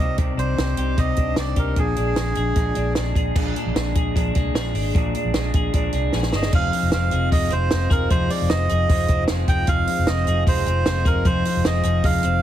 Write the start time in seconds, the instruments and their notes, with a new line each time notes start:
Already playing: clean electric guitar D5, melodica D#5
0.00 fingered electric bass C2, clean electric guitar C3 C4 D#4 G4
0.18 clean electric guitar C3 G3 C4 D#4 G4 D5, kick, closed hi-hat
0.38 fingered electric bass C2, clean electric guitar C4 D4 D#4 G4, melodica C5, closed hi-hat
0.57 fingered electric bass C2, clean electric guitar C4 D#4 G4 D5, snare, closed hi-hat
0.77 fingered electric bass C2, clean electric guitar C4 D#4 G4 D5, closed hi-hat
0.97 fingered electric bass C2, clean electric guitar C3 G3 C4 D#4 G4 D5, melodica D#5, kick, closed hi-hat
1.16 fingered electric bass C2, clean electric guitar C4 D4 D#4 G4 D5, kick, closed hi-hat
1.36 fingered electric bass C2, clean electric guitar C4 D#4 G4 D5, melodica D5, snare, closed hi-hat
1.56 fingered electric bass C2, clean electric guitar C4 D#4 G4 D5, melodica A#4, kick, closed hi-hat
1.76 fingered electric bass A#1, clean electric guitar A#2 F3 G#3 D4 G#4, melodica G#4, kick, closed hi-hat
1.96 fingered electric bass A#1, clean electric guitar G#3 D4 G#4, closed hi-hat
2.16 fingered electric bass A#1, clean electric guitar F3 G#3 D4 G#4, snare, closed hi-hat
2.35 fingered electric bass A#1, clean electric guitar G#3 D4 G#4, closed hi-hat
2.55 fingered electric bass A#1, clean electric guitar A#2 F3 G#3 D4 G#4, kick, closed hi-hat
2.75 fingered electric bass A#1, clean electric guitar G#3 D4 G#4, closed hi-hat
2.95 clean electric guitar F3 G#3 D4 G#4, snare, closed hi-hat
3.15 fingered electric bass A#1, clean electric guitar G#3 D4 G#4, kick, closed hi-hat
3.35 fingered electric bass A#1, clean electric guitar A#2 F3 G#3 D4 G#4, kick, crash
3.56 clean electric guitar G#3 D4 G#4, closed hi-hat
3.66 fingered electric bass A#1
3.75 fingered electric bass A#1, clean electric guitar A#2 F3 G#3 D4 G#4, snare, closed hi-hat
3.95 fingered electric bass A#1, clean electric guitar G#3 D4 G#4, kick, closed hi-hat
4.14 fingered electric bass A#1, clean electric guitar F3 G#3 D4 G#4, kick, closed hi-hat
4.35 fingered electric bass C2, clean electric guitar G#3 D4 G#4, kick, closed hi-hat
4.54 fingered electric bass A#1, clean electric guitar A#2 F3 G#3 D4 G#4, snare, closed hi-hat
4.74 fingered electric bass G#1, clean electric guitar D4 G#4, open hi-hat
4.78 clean electric guitar G#3
4.95 fingered electric bass A#1, clean electric guitar A#2 F3 G#3 D4 G#4, kick, closed hi-hat
5.14 clean electric guitar G#3 D4 G#4, closed hi-hat
5.24 fingered electric bass A#1
5.33 fingered electric bass A#1, clean electric guitar A#2 F3 G#3 D4 G#4, snare, closed hi-hat
5.53 fingered electric bass A#1, clean electric guitar G#3 D4 G#4, kick, closed hi-hat
5.73 fingered electric bass A#1, clean electric guitar F3 G#3 D4 G#4, kick, closed hi-hat
5.93 fingered electric bass C2, clean electric guitar G#3 D4 G#4, closed hi-hat
6.13 fingered electric bass A#1, clean electric guitar A#2 F3 G#3 D4 G#4, snare
6.23 snare
6.32 fingered electric bass G1, clean electric guitar D4 G#4, melodica D#5, snare
6.37 clean electric guitar G#3
6.43 snare
6.53 fingered electric bass F1, clean electric guitar F2 F3 G#3 D#4 F4 G#4 C5, melodica F5, kick, crash
6.72 clean electric guitar G#3 D#4 F4 C5, hi-hat pedal, open hi-hat
6.82 fingered electric bass F1
6.91 fingered electric bass F1, clean electric guitar G#3 C4 D#4 F4 C5, melodica F5, snare, hi-hat pedal, open hi-hat
7.11 fingered electric bass F1, clean electric guitar D#4 F4 G#4 C5, hi-hat pedal, open hi-hat
7.31 fingered electric bass F1, clean electric guitar F3 G#3 D#4 F4 C5, melodica D#5, kick, hi-hat pedal, open hi-hat
7.50 fingered electric bass F1, clean electric guitar C4 D#4 F4 C5, melodica C5, hi-hat pedal, open hi-hat
7.70 fingered electric bass F1, clean electric guitar G#3 D#4 F4 C5, snare, hi-hat pedal, open hi-hat
7.90 fingered electric bass F1, clean electric guitar D#4 F4 G#4 C5, melodica A#4, kick, hi-hat pedal, open hi-hat
8.10 fingered electric bass F1, clean electric guitar F2 F3 G#3 D#4 F4 G#4 C5, melodica C5, kick, hi-hat pedal, open hi-hat
8.29 clean electric guitar G#3 D#4 F4 C5, melodica D5, hi-hat pedal, open hi-hat
8.41 fingered electric bass F1
8.49 fingered electric bass F1, clean electric guitar G#3 C4 D#4 F4 C5, melodica D#5, snare, hi-hat pedal, open hi-hat
8.69 fingered electric bass F1, clean electric guitar D#4 F4 G#4 C5, hi-hat pedal, open hi-hat
8.88 fingered electric bass F1, clean electric guitar F3 G#3 D#4 F4 C5, kick, hi-hat pedal, open hi-hat
9.08 fingered electric bass F1, clean electric guitar C4 D#4 F4 C5, kick, hi-hat pedal, open hi-hat
9.28 fingered electric bass F1, clean electric guitar G#3 D#4 F4 C5, snare, hi-hat pedal, open hi-hat
9.47 fingered electric bass F1, clean electric guitar D#4 F4 G#4 C5, melodica G5, kick, hi-hat pedal, open hi-hat
9.67 fingered electric bass F1, clean electric guitar F2 F3 G#3 D#4 F4 G#4 C5, melodica F5, kick, hi-hat pedal, open hi-hat
9.87 clean electric guitar G#3 D#4 F4 C5, hi-hat pedal, open hi-hat
9.98 fingered electric bass F1
10.06 fingered electric bass F1, clean electric guitar G#3 C4 D#4 F4 C5, melodica D#5, snare, hi-hat pedal, open hi-hat
10.26 fingered electric bass F1, clean electric guitar D#4 F4 G#4 C5, hi-hat pedal, open hi-hat
10.46 fingered electric bass F1, clean electric guitar F3 G#3 D#4 F4 C5, melodica C5, kick, hi-hat pedal, open hi-hat
10.66 fingered electric bass F1, clean electric guitar C4 D#4 F4 C5, hi-hat pedal, open hi-hat
10.86 fingered electric bass F1, clean electric guitar G#3 D#4 F4 C5, snare, hi-hat pedal, open hi-hat
11.05 fingered electric bass F1, clean electric guitar D#4 F4 G#4 C5, melodica A#4, kick, hi-hat pedal, open hi-hat
11.25 fingered electric bass F1, clean electric guitar F2 F3 G#3 D#4 F4 G#4 C5, melodica C5, kick, hi-hat pedal, open hi-hat
11.45 clean electric guitar G#3 D#4 F4 C5, hi-hat pedal, open hi-hat
11.56 fingered electric bass F1
11.64 fingered electric bass F1, clean electric guitar G#3 C4 D#4 F4 C5, melodica D#5, snare, hi-hat pedal, open hi-hat
11.83 fingered electric bass F1, clean electric guitar F4 G#4 C5, hi-hat pedal, open hi-hat
11.88 clean electric guitar D#4
12.03 fingered electric bass F1, clean electric guitar F3 G#3 D#4 F4 C5, melodica F5, kick, hi-hat pedal, open hi-hat
12.23 fingered electric bass F1, clean electric guitar C4 D#4 F4 C5, hi-hat pedal, open hi-hat